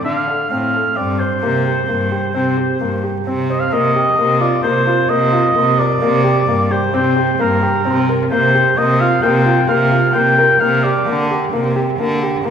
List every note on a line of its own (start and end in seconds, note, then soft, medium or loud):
0.04 0.23 D3 medium
0.04 0.22 D4 medium
0.04 0.47 F5 medium
0.28 0.45 A4 medium
0.49 0.88 A2 medium
0.49 0.68 C4 medium
0.49 0.98 F5 medium
0.74 0.91 A4 medium
0.96 1.33 G2 medium
0.96 1.14 C4 medium
0.96 1.20 D5 medium
1.19 3.26 C5 medium
1.19 1.37 C5 medium
1.41 1.79 C3 medium
1.41 1.60 A#3 medium
1.66 1.82 G4 medium
1.88 2.25 G2 medium
1.88 2.06 A#3 medium
2.12 2.29 G4 medium
2.34 2.53 C3 medium
2.34 2.51 C4 medium
2.57 2.74 G4 medium
2.80 3.17 G2 medium
2.80 2.98 A#3 medium
3.04 3.20 G4 medium
3.26 3.63 C3 medium
3.26 3.44 C4 medium
3.50 3.67 C5 medium
3.50 3.61 D#5 medium
3.60 3.74 F5 medium
3.72 4.09 C3 medium
3.72 3.90 A#3 medium
3.72 4.43 D#5 medium
3.96 4.13 G4 medium
4.18 4.55 C3 medium
4.18 4.35 A#3 medium
4.41 4.58 F4 medium
4.41 4.62 D5 medium
4.63 5.01 C3 medium
4.63 4.81 A#3 medium
4.63 5.10 C5 medium
4.87 5.04 F4 medium
5.09 5.47 C3 medium
5.09 5.27 A#3 medium
5.09 5.80 D#5 medium
5.33 5.50 F4 medium
5.55 5.93 C3 medium
5.55 5.73 A#3 medium
5.79 5.96 A#4 medium
5.79 6.73 D5 medium
6.01 6.39 C3 medium
6.01 6.19 A#3 medium
6.24 6.41 G4 medium
6.47 6.84 G2 medium
6.47 6.65 A#3 medium
6.71 6.88 G4 medium
6.71 6.94 C5 medium
6.93 7.31 C3 medium
6.93 7.11 C4 medium
6.93 7.43 C5 medium
7.16 7.33 G4 medium
7.39 7.77 G2 medium
7.39 7.56 A#3 medium
7.39 8.09 A#4 medium
7.63 7.80 G4 medium
7.85 8.23 C3 medium
7.85 8.02 C4 medium
8.09 8.26 A#4 medium
8.31 8.69 C3 medium
8.31 8.48 A#3 medium
8.31 8.79 C5 medium
8.55 8.72 G4 medium
8.77 9.15 C3 medium
8.77 8.95 A#3 medium
8.77 9.02 D#5 medium
9.00 9.18 F4 medium
9.00 9.24 F5 medium
9.22 9.61 C3 medium
9.22 9.40 A#3 medium
9.22 9.69 G5 medium
9.46 9.63 F4 medium
9.68 10.06 C3 medium
9.68 9.86 A#3 medium
9.68 10.14 F5 medium
9.92 10.09 F4 medium
10.13 10.52 C3 medium
10.13 10.32 A#3 medium
10.13 10.61 G5 medium
10.38 10.55 A#4 medium
10.60 10.98 C3 medium
10.60 10.78 A#3 medium
10.60 10.85 F5 medium
10.84 11.01 G4 medium
10.84 11.30 D5 medium
11.07 11.44 D3 medium
11.07 11.24 A#3 medium
11.31 11.47 G4 medium
11.53 11.90 C3 medium
11.53 11.70 A#3 medium
11.76 11.93 G4 medium
11.99 12.37 D3 medium
11.99 12.16 A#3 medium
12.23 12.40 G4 medium
12.45 12.50 C3 medium
12.45 12.50 A#3 medium